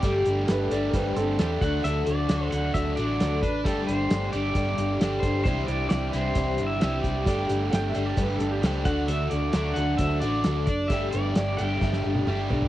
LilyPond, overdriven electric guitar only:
\new Staff \with { instrumentName = "Overdriven electric guitar" } { \time 4/4 \key d \mixolydian \tempo 4 = 132 <g a d' g'>4. <g a d' g'>4. <g a d' g'>8 <d fis a d' fis'>8~ | <d fis a d' fis'>4 <d fis a d' fis'>4. <d fis a d' fis'>4 r8 | <g a d' g'>4. <g a d' g'>4. <g a d' g'>4 | <c e g e' g'>4. <c e g e' g'>4. <c e g e' g'>4 |
<g a d' g'>4. <g a d' g'>4. <g a d' g'>8 <d fis a d' fis'>8~ | <d fis a d' fis'>4 <d fis a d' fis'>4. <d fis a d' fis'>4 r8 | <g a d' g'>4. <g a d' g'>4. <g a d' g'>4 | }